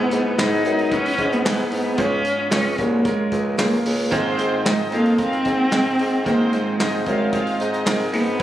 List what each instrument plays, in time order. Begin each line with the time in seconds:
Already playing: grand piano G#2 G#3 B3 E4 G#4 B4, cello B3
0.11 bassoon G#2, hi-hat pedal, open hi-hat
0.37 bassoon G#2, grand piano G#3 B3 E4 G#4 B4, cello D#4, snare, clap, hi-hat pedal, open hi-hat
0.65 bassoon F#2, grand piano G#3 B3 E4 G#4 B4, hi-hat pedal, open hi-hat
0.79 open hi-hat
0.91 grand piano G#3 B3 E4 G#4 B4, cello C#4, kick, hi-hat pedal, open hi-hat
1.05 hi-hat pedal, open hi-hat
1.18 bassoon G#2, kick, hi-hat pedal, open hi-hat
1.32 cello B3, hi-hat pedal
1.45 bassoon G#2, grand piano G#3 B3 E4 G#4 B4, snare, clap, hi-hat pedal, open hi-hat
1.58 snare
1.71 bassoon G#2, cello B3, hi-hat pedal, open hi-hat
1.97 bassoon C#2, grand piano G#2 G#3 C#4 F4 G#4 C5, cello C#4, kick, hi-hat pedal, open hi-hat
2.05 grand piano C#5
2.25 hi-hat pedal, open hi-hat
2.50 bassoon C#2, grand piano G#3 C#4 F4 G#4 C#5, cello C#4, snare, clap, hi-hat pedal, open hi-hat
2.78 bassoon C2, grand piano G#3 C#4 F4 G#4 C#5, cello A#3, kick, hi-hat pedal, open hi-hat
3.04 grand piano G#3 C#4 F4 G#4 A#4, cello G#3, kick, hi-hat pedal, open hi-hat
3.32 bassoon C#2, kick, hi-hat pedal, open hi-hat
3.57 bassoon C#2, grand piano G#3 C#4 F4 G#4 A#4, cello A#3, snare, clap, hi-hat pedal, open hi-hat
3.72 snare
3.85 bassoon C#2, hi-hat pedal, open hi-hat
4.11 grand piano G#2 D#3 C4 D#4 F4 G#4 C5, bassoon G#2, violin section C4 C5, kick, hi-hat pedal, open hi-hat
4.39 bassoon G#2, hi-hat pedal, open hi-hat
4.63 bassoon G#2, cello G#3, grand piano C4 D#4 F4 G#4 D#5, violin section D#4 D#5, snare, clap, hi-hat pedal, open hi-hat
4.91 bassoon F2, cello A#3, grand piano C4 D#4 F4 G#4 C5, violin section F4 F5, hi-hat pedal, open hi-hat
5.06 open hi-hat
5.18 grand piano C4 D#4 F4 G#4 A#4, cello C4, violin section F4 F5, kick, hi-hat pedal, open hi-hat
5.32 hi-hat pedal
5.45 bassoon G#2, violin section D#4 D#5, kick, hi-hat pedal, open hi-hat
5.72 bassoon G#2, grand piano C4 D#4 F4 G#4 C5, snare, clap, hi-hat pedal, open hi-hat
5.99 bassoon G#2, hi-hat pedal, open hi-hat
6.24 grand piano G#2 D#3 C4 D#4 F4 G#4 C5, bassoon G#2, cello A#3, violin section C4 C5, kick, hi-hat pedal, open hi-hat
6.53 bassoon G#2, cello G#3, hi-hat pedal, open hi-hat
6.79 bassoon G#2, grand piano C4 D#4 F4 G#4 D#5, violin section D#4 D#5, snare, clap, hi-hat pedal, open hi-hat
7.06 bassoon F#2, cello G#3, grand piano C4 D#4 F4 G#4 C5, violin section F4 F5, kick, hi-hat pedal, open hi-hat
7.32 grand piano C4 D#4 F4 G#4 C5, violin section F4 F5, kick, hi-hat pedal, open hi-hat
7.47 open hi-hat
7.60 bassoon G#2, violin section D#4 D#5, hi-hat pedal, open hi-hat
7.73 hi-hat pedal
7.85 bassoon G#2, grand piano C4 D#4 F4 G#4 A#4, snare, clap, hi-hat pedal, open hi-hat
7.99 snare
8.13 bassoon G#2, cello B3, hi-hat pedal, open hi-hat
8.39 grand piano G#3 E4, hi-hat pedal, open hi-hat